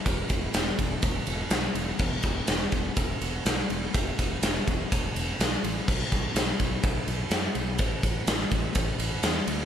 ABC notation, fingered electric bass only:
X:1
M:4/4
L:1/8
Q:1/4=124
K:Bdor
V:1 name="Fingered electric bass" clef=bass
E,,, E,,, E,,, E,,, E,,, E,,, B,,, E,,, | E,,, E,,, E,,, E,,, E,,, E,,, B,,, E,,, | E,,, E,,, E,,, E,,, E,,, E,,, B,,, A,,, | B,,, B,,, B,,, B,,, B,,, B,,, F,, B,,, |
A,,, A,,, A,,, A,,, A,,, A,,, E,, D,, |]